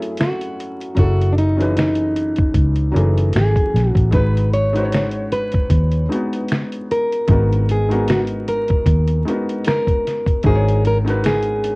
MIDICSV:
0, 0, Header, 1, 5, 480
1, 0, Start_track
1, 0, Key_signature, 5, "minor"
1, 0, Tempo, 789474
1, 589, Time_signature, 4, 2, 24, 8
1, 7146, End_track
2, 0, Start_track
2, 0, Title_t, "Nylon-string guitar"
2, 0, Program_c, 0, 24
2, 123, Note_on_c, 0, 66, 94
2, 572, Note_off_c, 0, 66, 0
2, 602, Note_on_c, 0, 66, 104
2, 804, Note_off_c, 0, 66, 0
2, 806, Note_on_c, 0, 62, 67
2, 836, Note_off_c, 0, 62, 0
2, 841, Note_on_c, 0, 63, 82
2, 1075, Note_off_c, 0, 63, 0
2, 1083, Note_on_c, 0, 63, 90
2, 2012, Note_off_c, 0, 63, 0
2, 2043, Note_on_c, 0, 68, 92
2, 2371, Note_off_c, 0, 68, 0
2, 2371, Note_on_c, 0, 66, 92
2, 2492, Note_off_c, 0, 66, 0
2, 2519, Note_on_c, 0, 71, 101
2, 2738, Note_off_c, 0, 71, 0
2, 2758, Note_on_c, 0, 73, 92
2, 3235, Note_off_c, 0, 73, 0
2, 3237, Note_on_c, 0, 71, 94
2, 4202, Note_off_c, 0, 71, 0
2, 4205, Note_on_c, 0, 70, 104
2, 4687, Note_off_c, 0, 70, 0
2, 4690, Note_on_c, 0, 68, 89
2, 4903, Note_off_c, 0, 68, 0
2, 4922, Note_on_c, 0, 66, 103
2, 4985, Note_off_c, 0, 66, 0
2, 5158, Note_on_c, 0, 70, 91
2, 5609, Note_off_c, 0, 70, 0
2, 5882, Note_on_c, 0, 70, 115
2, 6360, Note_off_c, 0, 70, 0
2, 6362, Note_on_c, 0, 68, 111
2, 6603, Note_off_c, 0, 68, 0
2, 6610, Note_on_c, 0, 70, 96
2, 6672, Note_off_c, 0, 70, 0
2, 6845, Note_on_c, 0, 68, 94
2, 7146, Note_off_c, 0, 68, 0
2, 7146, End_track
3, 0, Start_track
3, 0, Title_t, "Felt piano"
3, 0, Program_c, 1, 0
3, 0, Control_c, 1, 64, 127
3, 0, Note_on_c, 1, 54, 69
3, 0, Note_on_c, 1, 57, 80
3, 0, Note_on_c, 1, 61, 71
3, 0, Note_on_c, 1, 64, 69
3, 0, Note_on_c, 1, 68, 62
3, 0, Note_on_c, 1, 71, 79
3, 0, Note_on_c, 1, 80, 72
3, 545, Note_off_c, 1, 54, 0
3, 549, Note_off_c, 1, 61, 0
3, 552, Note_off_c, 1, 64, 0
3, 556, Note_off_c, 1, 68, 0
3, 560, Note_off_c, 1, 57, 0
3, 576, Note_on_c, 1, 54, 74
3, 585, Note_on_c, 1, 61, 71
3, 593, Note_on_c, 1, 64, 68
3, 599, Note_on_c, 1, 68, 66
3, 609, Note_on_c, 1, 69, 80
3, 932, Note_off_c, 1, 54, 0
3, 937, Note_off_c, 1, 61, 0
3, 941, Note_off_c, 1, 64, 0
3, 944, Note_off_c, 1, 68, 0
3, 949, Note_off_c, 1, 69, 0
3, 952, Note_on_c, 1, 54, 70
3, 962, Note_on_c, 1, 61, 68
3, 969, Note_on_c, 1, 52, 70
3, 976, Note_on_c, 1, 68, 71
3, 985, Note_off_c, 1, 71, 0
3, 985, Note_on_c, 1, 71, 84
3, 1738, Note_off_c, 1, 54, 0
3, 1743, Note_off_c, 1, 61, 0
3, 1746, Note_off_c, 1, 52, 0
3, 1750, Note_off_c, 1, 68, 0
3, 1754, Note_off_c, 1, 71, 0
3, 1773, Note_on_c, 1, 54, 80
3, 1785, Note_on_c, 1, 61, 74
3, 1790, Note_on_c, 1, 52, 80
3, 1800, Note_on_c, 1, 68, 77
3, 1805, Note_on_c, 1, 57, 86
3, 2462, Note_off_c, 1, 54, 0
3, 2468, Note_off_c, 1, 61, 0
3, 2471, Note_off_c, 1, 52, 0
3, 2476, Note_off_c, 1, 68, 0
3, 2478, Note_off_c, 1, 57, 0
3, 2498, Note_on_c, 1, 56, 74
3, 2505, Note_on_c, 1, 63, 64
3, 2513, Note_on_c, 1, 66, 61
3, 2516, Note_off_c, 1, 80, 0
3, 2516, Control_c, 1, 64, 0
3, 2521, Note_on_c, 1, 68, 65
3, 2529, Note_on_c, 1, 71, 77
3, 2629, Control_c, 1, 64, 127
3, 2853, Note_off_c, 1, 56, 0
3, 2857, Note_off_c, 1, 63, 0
3, 2861, Note_off_c, 1, 66, 0
3, 2865, Note_off_c, 1, 68, 0
3, 2869, Note_off_c, 1, 71, 0
3, 2876, Note_on_c, 1, 56, 79
3, 2883, Note_on_c, 1, 63, 69
3, 2892, Note_on_c, 1, 66, 70
3, 2899, Note_on_c, 1, 71, 75
3, 2907, Note_on_c, 1, 72, 70
3, 2930, Note_off_c, 1, 72, 0
3, 2947, Note_on_c, 1, 73, 83
3, 3660, Note_off_c, 1, 56, 0
3, 3664, Note_off_c, 1, 63, 0
3, 3668, Note_off_c, 1, 66, 0
3, 3671, Note_off_c, 1, 71, 0
3, 3695, Note_off_c, 1, 73, 0
3, 3703, Note_on_c, 1, 56, 64
3, 3708, Note_on_c, 1, 63, 61
3, 3718, Note_on_c, 1, 66, 65
3, 3722, Note_on_c, 1, 68, 62
3, 3733, Note_on_c, 1, 59, 75
3, 4387, Note_off_c, 1, 56, 0
3, 4390, Note_off_c, 1, 63, 0
3, 4395, Note_off_c, 1, 66, 0
3, 4397, Note_off_c, 1, 68, 0
3, 4402, Note_off_c, 1, 59, 0
3, 4423, Note_on_c, 1, 56, 80
3, 4431, Note_on_c, 1, 63, 64
3, 4439, Note_on_c, 1, 66, 66
3, 4446, Note_on_c, 1, 70, 62
3, 4452, Note_on_c, 1, 59, 77
3, 4776, Note_off_c, 1, 56, 0
3, 4780, Note_off_c, 1, 63, 0
3, 4783, Note_off_c, 1, 66, 0
3, 4787, Note_off_c, 1, 70, 0
3, 4790, Note_off_c, 1, 59, 0
3, 4796, Note_on_c, 1, 56, 74
3, 4803, Note_on_c, 1, 63, 66
3, 4813, Note_on_c, 1, 66, 74
3, 4818, Note_on_c, 1, 70, 72
3, 4827, Note_on_c, 1, 59, 78
3, 5580, Note_off_c, 1, 56, 0
3, 5583, Note_off_c, 1, 63, 0
3, 5588, Note_off_c, 1, 66, 0
3, 5591, Note_off_c, 1, 70, 0
3, 5595, Note_off_c, 1, 59, 0
3, 5625, Note_on_c, 1, 56, 68
3, 5631, Note_on_c, 1, 63, 66
3, 5640, Note_on_c, 1, 66, 66
3, 5648, Note_on_c, 1, 70, 66
3, 5651, Note_on_c, 1, 59, 81
3, 6308, Note_off_c, 1, 56, 0
3, 6311, Note_off_c, 1, 63, 0
3, 6315, Note_off_c, 1, 66, 0
3, 6320, Note_off_c, 1, 70, 0
3, 6321, Note_off_c, 1, 59, 0
3, 6344, Note_on_c, 1, 56, 73
3, 6353, Note_on_c, 1, 63, 71
3, 6358, Note_on_c, 1, 66, 66
3, 6368, Note_on_c, 1, 70, 66
3, 6373, Note_on_c, 1, 72, 63
3, 6406, Note_off_c, 1, 72, 0
3, 6415, Note_on_c, 1, 73, 87
3, 6696, Note_off_c, 1, 56, 0
3, 6701, Note_off_c, 1, 63, 0
3, 6703, Note_off_c, 1, 66, 0
3, 6708, Note_off_c, 1, 70, 0
3, 6716, Note_on_c, 1, 56, 75
3, 6725, Note_on_c, 1, 63, 71
3, 6731, Note_off_c, 1, 73, 0
3, 6733, Note_on_c, 1, 66, 70
3, 6742, Note_on_c, 1, 70, 75
3, 6749, Note_on_c, 1, 71, 84
3, 7146, Note_off_c, 1, 56, 0
3, 7146, Note_off_c, 1, 63, 0
3, 7146, Note_off_c, 1, 66, 0
3, 7146, Note_off_c, 1, 70, 0
3, 7146, Note_off_c, 1, 71, 0
3, 7146, End_track
4, 0, Start_track
4, 0, Title_t, "Fingered electric bass"
4, 0, Program_c, 2, 33
4, 592, Note_on_c, 2, 30, 102
4, 1526, Note_off_c, 2, 30, 0
4, 1547, Note_on_c, 2, 37, 87
4, 1771, Note_off_c, 2, 37, 0
4, 1795, Note_on_c, 2, 30, 92
4, 2015, Note_off_c, 2, 30, 0
4, 2038, Note_on_c, 2, 32, 89
4, 2159, Note_off_c, 2, 32, 0
4, 2275, Note_on_c, 2, 34, 87
4, 2397, Note_off_c, 2, 34, 0
4, 2405, Note_on_c, 2, 33, 83
4, 2503, Note_off_c, 2, 33, 0
4, 2512, Note_on_c, 2, 32, 96
4, 3446, Note_off_c, 2, 32, 0
4, 3466, Note_on_c, 2, 39, 93
4, 3691, Note_off_c, 2, 39, 0
4, 4431, Note_on_c, 2, 32, 97
4, 5366, Note_off_c, 2, 32, 0
4, 5386, Note_on_c, 2, 39, 97
4, 5611, Note_off_c, 2, 39, 0
4, 6352, Note_on_c, 2, 32, 102
4, 7146, Note_off_c, 2, 32, 0
4, 7146, End_track
5, 0, Start_track
5, 0, Title_t, "Drums"
5, 14, Note_on_c, 9, 42, 43
5, 75, Note_off_c, 9, 42, 0
5, 106, Note_on_c, 9, 42, 74
5, 126, Note_on_c, 9, 26, 96
5, 127, Note_on_c, 9, 38, 122
5, 166, Note_off_c, 9, 42, 0
5, 187, Note_off_c, 9, 26, 0
5, 188, Note_off_c, 9, 38, 0
5, 251, Note_on_c, 9, 42, 52
5, 312, Note_off_c, 9, 42, 0
5, 366, Note_on_c, 9, 42, 58
5, 427, Note_off_c, 9, 42, 0
5, 494, Note_on_c, 9, 42, 55
5, 555, Note_off_c, 9, 42, 0
5, 588, Note_on_c, 9, 42, 65
5, 592, Note_on_c, 9, 36, 98
5, 648, Note_off_c, 9, 42, 0
5, 653, Note_off_c, 9, 36, 0
5, 738, Note_on_c, 9, 42, 43
5, 799, Note_off_c, 9, 42, 0
5, 840, Note_on_c, 9, 42, 58
5, 900, Note_off_c, 9, 42, 0
5, 976, Note_on_c, 9, 42, 40
5, 1037, Note_off_c, 9, 42, 0
5, 1075, Note_on_c, 9, 42, 75
5, 1088, Note_on_c, 9, 26, 83
5, 1088, Note_on_c, 9, 38, 114
5, 1136, Note_off_c, 9, 42, 0
5, 1148, Note_off_c, 9, 26, 0
5, 1149, Note_off_c, 9, 38, 0
5, 1188, Note_on_c, 9, 42, 58
5, 1249, Note_off_c, 9, 42, 0
5, 1315, Note_on_c, 9, 42, 65
5, 1376, Note_off_c, 9, 42, 0
5, 1435, Note_on_c, 9, 42, 44
5, 1450, Note_on_c, 9, 36, 97
5, 1496, Note_off_c, 9, 42, 0
5, 1511, Note_off_c, 9, 36, 0
5, 1546, Note_on_c, 9, 36, 93
5, 1547, Note_on_c, 9, 42, 89
5, 1607, Note_off_c, 9, 36, 0
5, 1608, Note_off_c, 9, 42, 0
5, 1676, Note_on_c, 9, 42, 43
5, 1737, Note_off_c, 9, 42, 0
5, 1801, Note_on_c, 9, 42, 67
5, 1862, Note_off_c, 9, 42, 0
5, 1931, Note_on_c, 9, 42, 43
5, 1992, Note_off_c, 9, 42, 0
5, 2024, Note_on_c, 9, 42, 73
5, 2045, Note_on_c, 9, 26, 104
5, 2045, Note_on_c, 9, 38, 123
5, 2085, Note_off_c, 9, 42, 0
5, 2105, Note_off_c, 9, 26, 0
5, 2106, Note_off_c, 9, 38, 0
5, 2163, Note_on_c, 9, 36, 88
5, 2169, Note_on_c, 9, 42, 48
5, 2224, Note_off_c, 9, 36, 0
5, 2230, Note_off_c, 9, 42, 0
5, 2286, Note_on_c, 9, 42, 55
5, 2288, Note_on_c, 9, 38, 34
5, 2347, Note_off_c, 9, 42, 0
5, 2349, Note_off_c, 9, 38, 0
5, 2402, Note_on_c, 9, 36, 93
5, 2413, Note_on_c, 9, 42, 55
5, 2463, Note_off_c, 9, 36, 0
5, 2474, Note_off_c, 9, 42, 0
5, 2508, Note_on_c, 9, 42, 65
5, 2511, Note_on_c, 9, 36, 102
5, 2568, Note_off_c, 9, 42, 0
5, 2572, Note_off_c, 9, 36, 0
5, 2658, Note_on_c, 9, 42, 42
5, 2719, Note_off_c, 9, 42, 0
5, 2757, Note_on_c, 9, 42, 59
5, 2818, Note_off_c, 9, 42, 0
5, 2892, Note_on_c, 9, 42, 41
5, 2953, Note_off_c, 9, 42, 0
5, 2994, Note_on_c, 9, 42, 75
5, 3006, Note_on_c, 9, 26, 83
5, 3007, Note_on_c, 9, 38, 107
5, 3054, Note_off_c, 9, 42, 0
5, 3067, Note_off_c, 9, 26, 0
5, 3068, Note_off_c, 9, 38, 0
5, 3109, Note_on_c, 9, 42, 56
5, 3170, Note_off_c, 9, 42, 0
5, 3234, Note_on_c, 9, 42, 65
5, 3295, Note_off_c, 9, 42, 0
5, 3355, Note_on_c, 9, 42, 42
5, 3369, Note_on_c, 9, 36, 96
5, 3415, Note_off_c, 9, 42, 0
5, 3430, Note_off_c, 9, 36, 0
5, 3465, Note_on_c, 9, 36, 82
5, 3466, Note_on_c, 9, 42, 95
5, 3526, Note_off_c, 9, 36, 0
5, 3526, Note_off_c, 9, 42, 0
5, 3597, Note_on_c, 9, 42, 43
5, 3658, Note_off_c, 9, 42, 0
5, 3722, Note_on_c, 9, 42, 65
5, 3783, Note_off_c, 9, 42, 0
5, 3849, Note_on_c, 9, 42, 43
5, 3910, Note_off_c, 9, 42, 0
5, 3943, Note_on_c, 9, 42, 74
5, 3963, Note_on_c, 9, 26, 102
5, 3964, Note_on_c, 9, 38, 127
5, 4003, Note_off_c, 9, 42, 0
5, 4024, Note_off_c, 9, 26, 0
5, 4025, Note_off_c, 9, 38, 0
5, 4087, Note_on_c, 9, 42, 49
5, 4147, Note_off_c, 9, 42, 0
5, 4202, Note_on_c, 9, 42, 62
5, 4263, Note_off_c, 9, 42, 0
5, 4332, Note_on_c, 9, 42, 52
5, 4392, Note_off_c, 9, 42, 0
5, 4424, Note_on_c, 9, 42, 69
5, 4429, Note_on_c, 9, 36, 103
5, 4485, Note_off_c, 9, 42, 0
5, 4490, Note_off_c, 9, 36, 0
5, 4576, Note_on_c, 9, 42, 45
5, 4637, Note_off_c, 9, 42, 0
5, 4676, Note_on_c, 9, 42, 60
5, 4737, Note_off_c, 9, 42, 0
5, 4811, Note_on_c, 9, 42, 45
5, 4872, Note_off_c, 9, 42, 0
5, 4911, Note_on_c, 9, 42, 74
5, 4924, Note_on_c, 9, 26, 84
5, 4924, Note_on_c, 9, 38, 102
5, 4972, Note_off_c, 9, 42, 0
5, 4985, Note_off_c, 9, 26, 0
5, 4985, Note_off_c, 9, 38, 0
5, 5029, Note_on_c, 9, 42, 62
5, 5090, Note_off_c, 9, 42, 0
5, 5155, Note_on_c, 9, 42, 66
5, 5215, Note_off_c, 9, 42, 0
5, 5277, Note_on_c, 9, 42, 45
5, 5290, Note_on_c, 9, 36, 97
5, 5338, Note_off_c, 9, 42, 0
5, 5350, Note_off_c, 9, 36, 0
5, 5385, Note_on_c, 9, 36, 83
5, 5388, Note_on_c, 9, 42, 94
5, 5446, Note_off_c, 9, 36, 0
5, 5449, Note_off_c, 9, 42, 0
5, 5518, Note_on_c, 9, 42, 46
5, 5579, Note_off_c, 9, 42, 0
5, 5642, Note_on_c, 9, 42, 66
5, 5702, Note_off_c, 9, 42, 0
5, 5771, Note_on_c, 9, 42, 44
5, 5832, Note_off_c, 9, 42, 0
5, 5864, Note_on_c, 9, 42, 74
5, 5885, Note_on_c, 9, 26, 109
5, 5885, Note_on_c, 9, 38, 121
5, 5925, Note_off_c, 9, 42, 0
5, 5945, Note_off_c, 9, 26, 0
5, 5946, Note_off_c, 9, 38, 0
5, 6002, Note_on_c, 9, 36, 94
5, 6008, Note_on_c, 9, 42, 52
5, 6062, Note_off_c, 9, 36, 0
5, 6069, Note_off_c, 9, 42, 0
5, 6122, Note_on_c, 9, 42, 62
5, 6125, Note_on_c, 9, 38, 36
5, 6183, Note_off_c, 9, 42, 0
5, 6185, Note_off_c, 9, 38, 0
5, 6240, Note_on_c, 9, 36, 95
5, 6247, Note_on_c, 9, 42, 52
5, 6301, Note_off_c, 9, 36, 0
5, 6308, Note_off_c, 9, 42, 0
5, 6341, Note_on_c, 9, 42, 64
5, 6349, Note_on_c, 9, 36, 105
5, 6402, Note_off_c, 9, 42, 0
5, 6409, Note_off_c, 9, 36, 0
5, 6496, Note_on_c, 9, 42, 41
5, 6557, Note_off_c, 9, 42, 0
5, 6596, Note_on_c, 9, 42, 52
5, 6657, Note_off_c, 9, 42, 0
5, 6734, Note_on_c, 9, 42, 43
5, 6795, Note_off_c, 9, 42, 0
5, 6833, Note_on_c, 9, 42, 74
5, 6846, Note_on_c, 9, 26, 84
5, 6846, Note_on_c, 9, 38, 109
5, 6894, Note_off_c, 9, 42, 0
5, 6907, Note_off_c, 9, 26, 0
5, 6907, Note_off_c, 9, 38, 0
5, 6947, Note_on_c, 9, 42, 59
5, 7008, Note_off_c, 9, 42, 0
5, 7076, Note_on_c, 9, 42, 69
5, 7137, Note_off_c, 9, 42, 0
5, 7146, End_track
0, 0, End_of_file